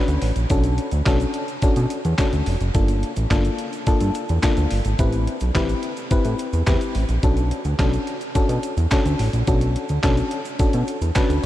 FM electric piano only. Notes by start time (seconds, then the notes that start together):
Already playing: C#4 D4 F#4 B4
0.50 C#4 D4 F#4 A4
1.06 C#4 D4 F#4 A4
1.63 C#4 D4 F#4 A4
2.18 C#4 D4 F#4 A4
2.74 A#3 D4 F4 A4
3.31 A#3 D4 F4 A4
3.87 A#3 D4 F4 A4
4.43 A#3 D4 F4 A4
4.99 C4 E4 G4 B4
5.55 C4 E4 G4 B4
6.11 C4 E4 G4 B4
6.67 C4 E4 G4 B4
7.23 C#4 D4 F#4 A4
7.79 C#4 D4 F#4 A4
8.35 C#4 D4 F#4 A4
8.91 C#4 D4 F#4 A4
9.47 C#4 D4 F#4 A4
10.03 C#4 D4 F#4 A4
10.59 C#4 D4 F#4 A4
11.15 C#4 D4 F#4 B4 A5